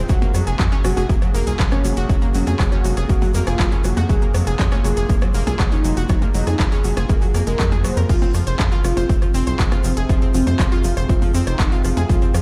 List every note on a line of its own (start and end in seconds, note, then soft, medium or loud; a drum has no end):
0.00 8.08 F2 medium
0.00 8.08 C3 medium
0.00 8.05 G#4 medium
0.09 0.18 F1 loud
0.09 0.15 F#3 loud
0.09 8.05 A#3 medium
0.09 4.05 F#4 medium
0.09 0.31 F#4 loud
0.09 kick loud
0.09 closed hi-hat medium
0.09 shaker medium
0.22 0.30 A#3 medium
0.22 closed hi-hat soft
0.22 percussion blips medium
0.22 shaker soft
0.34 0.43 F2 medium
0.34 0.42 F#3 medium
0.34 cross-stick medium
0.34 open hi-hat loud
0.34 shaker loud
0.47 0.55 F1 medium
0.47 0.55 G#4 loud
0.47 closed hi-hat medium
0.47 shaker soft
0.59 0.68 F2 loud
0.59 0.65 F#3 medium
0.59 kick loud
0.59 clap loud
0.59 closed hi-hat medium
0.59 shaker medium
0.72 0.75 C#4 loud
0.72 closed hi-hat soft
0.72 shaker soft
0.84 0.93 F1 loud
0.84 0.90 F#3 medium
0.84 1.06 F#4 loud
0.84 cross-stick medium
0.84 open hi-hat loud
0.84 shaker medium
0.97 1.05 F1 medium
0.97 1.02 G#4 loud
0.97 closed hi-hat medium
0.97 percussion blips medium
0.97 shaker soft
1.09 1.18 F1 loud
1.09 1.13 A#3 medium
1.09 kick loud
1.09 closed hi-hat medium
1.09 shaker medium
1.22 1.27 F#3 medium
1.22 cross-stick medium
1.22 closed hi-hat soft
1.22 shaker soft
1.34 1.43 F1 loud
1.34 1.40 A#3 loud
1.34 open hi-hat loud
1.34 shaker medium
1.47 1.55 C2 medium
1.47 1.55 G#4 loud
1.47 closed hi-hat medium
1.47 shaker soft
1.59 1.68 F1 loud
1.59 1.65 F#3 medium
1.59 kick loud
1.59 clap loud
1.59 closed hi-hat medium
1.59 shaker medium
1.71 1.94 C#4 loud
1.71 1.80 C#4 medium
1.71 cross-stick medium
1.71 closed hi-hat soft
1.71 percussion blips medium
1.71 shaker soft
1.84 1.93 F1 medium
1.84 1.90 F#3 medium
1.84 open hi-hat loud
1.84 shaker loud
1.97 2.05 F1 medium
1.97 2.02 F#4 loud
1.97 closed hi-hat medium
1.97 shaker soft
2.09 2.18 F1 loud
2.09 2.15 F#3 loud
2.09 2.24 C#4 medium
2.09 kick loud
2.09 cross-stick medium
2.09 closed hi-hat medium
2.09 shaker medium
2.22 2.30 A#3 medium
2.22 closed hi-hat soft
2.22 shaker soft
2.34 2.43 F1 medium
2.34 2.42 F#3 medium
2.34 2.56 C#4 loud
2.34 open hi-hat loud
2.34 shaker medium
2.47 2.55 F2 medium
2.47 2.55 G#4 loud
2.47 closed hi-hat medium
2.47 percussion blips loud
2.47 shaker soft
2.59 2.68 F1 loud
2.59 2.65 F#3 medium
2.59 kick loud
2.59 cross-stick medium
2.59 clap loud
2.59 closed hi-hat medium
2.59 shaker soft
2.72 2.75 C#4 loud
2.72 2.94 F#4 loud
2.72 closed hi-hat soft
2.72 shaker soft
2.84 2.93 F1 medium
2.84 2.90 F#3 medium
2.84 open hi-hat loud
2.84 shaker medium
2.97 3.05 F1 medium
2.97 3.02 G#4 loud
2.97 cross-stick medium
2.97 closed hi-hat medium
2.97 shaker soft
3.09 3.18 F1 loud
3.09 3.13 A#3 medium
3.09 3.31 F#4 loud
3.09 kick loud
3.09 closed hi-hat medium
3.09 shaker medium
3.22 3.27 F#3 medium
3.22 open hi-hat medium
3.22 percussion blips loud
3.22 shaker soft
3.34 3.43 F2 loud
3.34 3.40 A#3 loud
3.34 open hi-hat loud
3.34 shaker loud
3.47 3.55 F1 medium
3.47 3.69 F4 loud
3.47 3.55 G#4 loud
3.47 cross-stick medium
3.47 closed hi-hat medium
3.47 shaker soft
3.59 3.68 F1 loud
3.59 3.65 F#3 medium
3.59 kick loud
3.59 clap loud
3.59 closed hi-hat medium
3.59 shaker soft
3.72 3.80 C#4 medium
3.72 closed hi-hat soft
3.72 shaker soft
3.84 3.93 F1 loud
3.84 3.90 F#3 medium
3.84 3.99 F#4 loud
3.84 cross-stick medium
3.84 open hi-hat loud
3.84 shaker loud
3.97 4.05 F2 medium
3.97 4.02 F#4 loud
3.97 closed hi-hat medium
3.97 percussion blips loud
3.97 shaker soft
4.09 4.18 F1 loud
4.09 4.15 F#3 loud
4.09 8.05 F4 medium
4.09 4.31 G#4 loud
4.09 kick loud
4.09 closed hi-hat medium
4.09 shaker medium
4.22 4.30 A#3 medium
4.22 closed hi-hat soft
4.22 shaker soft
4.34 4.43 F2 loud
4.34 4.42 F#3 medium
4.34 cross-stick medium
4.34 open hi-hat loud
4.34 shaker medium
4.47 4.55 F1 medium
4.47 4.55 G#4 loud
4.47 closed hi-hat medium
4.47 shaker soft
4.59 4.68 F2 loud
4.59 4.65 F#3 medium
4.59 kick loud
4.59 clap loud
4.59 closed hi-hat medium
4.59 shaker soft
4.71 4.75 C#4 loud
4.71 cross-stick medium
4.71 closed hi-hat soft
4.71 percussion blips loud
4.71 shaker soft
4.84 4.93 F1 loud
4.84 4.90 F#3 medium
4.84 5.06 G#4 loud
4.84 open hi-hat loud
4.84 shaker medium
4.97 5.05 F1 medium
4.97 5.02 G#4 loud
4.97 closed hi-hat medium
4.97 shaker soft
5.09 5.18 F1 loud
5.09 5.13 A#3 medium
5.09 kick loud
5.09 closed hi-hat medium
5.09 shaker medium
5.21 5.27 F#3 medium
5.21 cross-stick medium
5.21 closed hi-hat soft
5.21 shaker soft
5.34 5.43 F1 loud
5.34 5.40 A#3 loud
5.34 open hi-hat loud
5.34 shaker medium
5.47 5.55 C2 medium
5.47 5.55 G#4 loud
5.47 closed hi-hat medium
5.47 percussion blips loud
5.47 shaker soft
5.59 5.68 F1 loud
5.59 5.65 F#3 medium
5.59 kick loud
5.59 cross-stick medium
5.59 clap loud
5.59 closed hi-hat medium
5.59 shaker medium
5.72 5.80 C#4 medium
5.72 5.94 D#4 loud
5.72 closed hi-hat soft
5.72 shaker soft
5.84 5.93 F1 loud
5.84 5.90 F#3 medium
5.84 open hi-hat loud
5.84 shaker loud
5.97 6.05 F1 medium
5.97 6.02 F#4 loud
5.97 closed hi-hat medium
5.97 shaker soft
6.09 6.18 F1 loud
6.09 6.15 F#3 loud
6.09 6.24 D#4 medium
6.09 kick loud
6.09 cross-stick medium
6.09 closed hi-hat medium
6.09 shaker medium
6.22 6.30 A#3 medium
6.22 closed hi-hat soft
6.22 percussion blips loud
6.22 shaker soft
6.34 6.43 F1 medium
6.34 6.42 F#3 medium
6.34 6.56 D#4 loud
6.34 open hi-hat loud
6.34 shaker medium
6.47 6.55 F2 medium
6.47 6.55 G#4 loud
6.47 cross-stick medium
6.47 closed hi-hat medium
6.47 shaker soft
6.59 6.68 F1 loud
6.59 6.65 F#3 medium
6.59 kick loud
6.59 clap loud
6.59 closed hi-hat medium
6.59 shaker soft
6.72 6.75 C#4 loud
6.72 6.94 G#4 loud
6.72 closed hi-hat soft
6.72 shaker soft
6.84 6.93 F1 loud
6.84 6.90 F#3 medium
6.84 open hi-hat loud
6.84 shaker medium
6.97 7.05 F1 medium
6.97 7.02 G#4 loud
6.97 cross-stick medium
6.97 closed hi-hat medium
6.97 percussion blips loud
6.97 shaker soft
7.09 7.18 F1 loud
7.09 7.13 A#3 medium
7.09 7.31 G#4 loud
7.09 kick loud
7.09 closed hi-hat medium
7.09 shaker medium
7.21 7.27 F#3 medium
7.21 open hi-hat medium
7.21 shaker soft
7.34 7.43 F2 loud
7.34 7.42 A#3 medium
7.34 cross-stick soft
7.34 open hi-hat loud
7.34 shaker medium
7.47 7.55 F1 medium
7.47 7.52 G#3 loud
7.47 7.69 A#4 loud
7.47 closed hi-hat medium
7.47 shaker soft
7.59 7.86 F2 loud
7.59 7.65 F#3 medium
7.59 kick loud
7.59 clap loud
7.59 closed hi-hat medium
7.59 shaker soft
7.72 7.77 G#4 medium
7.72 closed hi-hat soft
7.72 percussion blips loud
7.72 shaker soft
7.84 7.93 F1 loud
7.84 7.92 F#3 medium
7.84 7.99 C5 medium
7.84 cross-stick medium
7.84 open hi-hat loud
7.84 shaker medium
7.97 8.05 F2 medium
7.97 8.00 A#4 medium
7.97 closed hi-hat medium
7.97 shaker soft
8.09 8.18 F1 loud
8.09 12.42 F2 medium
8.09 12.42 C3 medium
8.09 8.15 F3 loud
8.09 12.42 C4 medium
8.09 8.31 F4 loud
8.09 12.42 F4 medium
8.09 12.42 G#4 medium
8.09 kick loud
8.09 closed hi-hat medium
8.09 crash medium
8.09 shaker medium
8.22 8.30 C4 medium
8.22 closed hi-hat soft
8.22 percussion blips medium
8.22 shaker soft
8.34 8.43 F2 medium
8.34 8.42 F3 medium
8.34 cross-stick medium
8.34 open hi-hat loud
8.34 shaker loud
8.47 8.55 F1 medium
8.47 8.55 C5 loud
8.47 closed hi-hat medium
8.47 shaker soft
8.59 8.68 F2 loud
8.59 8.65 F3 medium
8.59 kick loud
8.59 clap loud
8.59 closed hi-hat medium
8.59 shaker medium
8.72 8.75 F4 loud
8.72 closed hi-hat soft
8.72 shaker soft
8.84 8.93 F1 loud
8.84 8.90 F3 medium
8.84 9.06 F4 loud
8.84 cross-stick medium
8.84 open hi-hat loud
8.84 shaker medium
8.97 9.05 F1 medium
8.97 9.02 C5 loud
8.97 closed hi-hat medium
8.97 percussion blips medium
8.97 shaker soft
9.09 9.18 F1 loud
9.09 9.13 C4 medium
9.09 kick loud
9.09 closed hi-hat medium
9.09 shaker medium
9.22 9.27 F3 medium
9.22 cross-stick medium
9.22 closed hi-hat soft
9.22 shaker soft
9.34 9.43 F1 loud
9.34 9.40 C4 loud
9.34 open hi-hat loud
9.34 shaker medium
9.47 9.55 C2 medium
9.47 9.55 C5 loud
9.47 closed hi-hat medium
9.47 shaker soft
9.59 9.68 F1 loud
9.59 9.65 F3 medium
9.59 kick loud
9.59 clap loud
9.59 closed hi-hat medium
9.59 shaker medium
9.72 9.94 C4 loud
9.72 9.80 F4 medium
9.72 cross-stick medium
9.72 closed hi-hat soft
9.72 percussion blips medium
9.72 shaker soft
9.84 9.93 F1 loud
9.84 9.90 F3 medium
9.84 open hi-hat loud
9.84 shaker loud
9.97 10.05 F1 medium
9.97 10.02 G#4 loud
9.97 closed hi-hat medium
9.97 shaker soft
10.09 10.18 F1 loud
10.09 10.15 F3 loud
10.09 10.24 C4 loud
10.09 kick loud
10.09 cross-stick medium
10.09 closed hi-hat medium
10.09 shaker medium
10.22 10.30 C4 medium
10.22 closed hi-hat soft
10.22 shaker soft
10.34 10.43 F1 loud
10.34 10.42 F3 medium
10.34 10.56 C4 loud
10.34 open hi-hat loud
10.34 shaker medium
10.47 10.55 F2 medium
10.47 10.55 C5 loud
10.47 closed hi-hat medium
10.47 percussion blips medium
10.47 shaker soft
10.59 10.68 F1 loud
10.59 10.65 F3 medium
10.59 kick loud
10.59 cross-stick medium
10.59 clap loud
10.59 closed hi-hat medium
10.59 shaker medium
10.72 10.94 F4 medium
10.72 10.75 F4 loud
10.72 closed hi-hat soft
10.72 shaker soft
10.84 10.93 F1 medium
10.84 10.90 F3 medium
10.84 open hi-hat loud
10.84 shaker medium
10.97 11.05 F1 medium
10.97 11.02 C5 loud
10.97 cross-stick medium
10.97 closed hi-hat medium
10.97 shaker soft
11.09 11.18 F1 loud
11.09 11.13 C4 medium
11.09 11.31 F4 loud
11.09 kick loud
11.09 closed hi-hat medium
11.09 shaker medium
11.22 11.27 F3 medium
11.22 open hi-hat medium
11.22 percussion blips medium
11.22 shaker soft
11.34 11.43 F2 loud
11.34 11.40 C4 loud
11.34 open hi-hat loud
11.34 shaker loud
11.47 11.55 F1 medium
11.47 11.69 D#4 loud
11.47 11.55 C5 loud
11.47 cross-stick medium
11.47 closed hi-hat medium
11.47 shaker soft
11.59 11.68 F1 loud
11.59 11.65 F3 medium
11.59 kick loud
11.59 clap loud
11.59 closed hi-hat medium
11.59 shaker medium
11.72 11.80 F4 medium
11.72 closed hi-hat soft
11.72 shaker soft
11.84 11.93 F1 loud
11.84 11.90 F3 medium
11.84 11.99 F4 medium
11.84 cross-stick medium
11.84 open hi-hat loud
11.84 shaker loud
11.97 12.05 F2 medium
11.97 12.02 G#4 loud
11.97 closed hi-hat medium
11.97 percussion blips medium
11.97 shaker soft
12.09 12.18 F1 loud
12.09 12.15 F3 loud
12.09 12.31 F4 loud
12.09 kick loud
12.09 closed hi-hat medium
12.09 shaker medium
12.22 12.30 C4 medium
12.22 closed hi-hat soft
12.22 shaker soft
12.34 12.42 F2 medium
12.34 12.42 F3 medium
12.34 cross-stick medium
12.34 open hi-hat loud
12.34 shaker loud